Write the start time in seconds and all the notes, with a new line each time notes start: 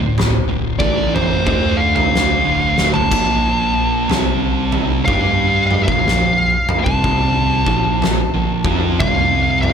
0.00 D1 D2 A2
0.18 snare, floor tom
0.48 D1 D2 A2
0.79 A1 A2 E3 A3 D5, kick, floor tom
1.15 C5, floor tom, mid tom
1.46 D2 D3 A3 D4, kick, mid tom
1.77 F5
1.96 F5, floor tom
2.15 snare
2.44 D1 D2 A2 D3
2.78 snare
2.94 A5, floor tom
3.11 A#1 A#2 F3 A#3, kick, floor tom, splash
4.09 C2 C3 G3 C4, snare, floor tom
4.72 floor tom
5.05 G2 G3 D4 G4 F5, kick, floor tom, mid tom
5.67 F5, mid tom
5.84 A#2 F5, kick, floor tom
5.88 A#1 F3
6.06 A#1 A#2 F3, snare
6.69 floor tom, mid tom
6.84 C2 C3 G3 C4 A5, kick
7.04 kick, floor tom
7.66 A#1 A#2 F3, kick
7.84 A#1 A#2 F3
8.02 snare, floor tom
8.34 A#1 A#2 F3
8.64 F2 F3 C4 F4, kick, floor tom
9.00 C2 C3 G3 C4 F5, kick, floor tom, mid tom
9.62 F5, mid tom